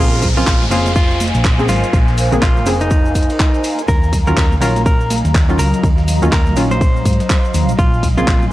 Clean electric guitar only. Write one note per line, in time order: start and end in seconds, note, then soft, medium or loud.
0.00 0.26 F4 loud
0.37 0.64 F4 loud
0.71 0.91 F4 medium
0.96 1.24 F4 medium
1.69 1.97 F4 loud
2.42 2.70 F4 medium
2.81 3.81 D#4 medium
3.88 4.17 A#4 loud
4.27 4.54 A#4 loud
4.62 4.81 A#4 medium
4.86 5.14 A#4 medium
5.59 5.87 A#4 loud
6.32 6.61 A#4 loud
6.71 7.71 C5 loud
7.79 8.07 F4 loud
8.18 8.45 F4 loud